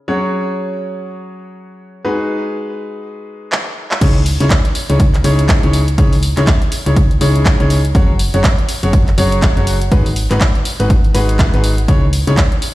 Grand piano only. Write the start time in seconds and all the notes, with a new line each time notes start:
0.08 F#3 C#4 F#4 G#4 C#5
2.05 G#3 D#4 F#4 G#4 B4
4.01 C#3 D#4 E4 G#4 C#5
4.40 C#3 D#4 E4 G#4 C#5
4.90 C#3 D#4 E4 G#4 C#5
5.24 C#3 D#4 E4 G#4 C#5
5.63 C#3 D#4 E4 G#4 C#5
5.98 C#3 D#4 E4 G#4 C#5
6.37 C#3 D#4 E4 G#4 C#5
6.86 C#3 D#4 E4 G#4 C#5
7.21 C#3 D#4 E4 G#4 C#5
7.60 C#3 D#4 E4 G#4 C#5
7.95 F#3 C#4 F#4 G#4 C#5
8.34 F#3 C#4 F#4 G#4 C#5
8.83 F#3 C#4 F#4 G#4 C#5
9.18 F#3 C#4 F#4 G#4 C#5
9.57 F#3 C#4 F#4 G#4 C#5
9.92 G#3 D#4 F#4 G#4 B4
10.31 G#3 D#4 F#4 G#4 B4
10.80 G#3 D#4 F#4 G#4 B4
11.14 G#3 D#4 F#4 G#4 B4
11.54 G#3 D#4 F#4 G#4 B4
11.88 C#3 D#4 E4 G#4 C#5
12.27 C#3 D#4 E4 G#4 C#5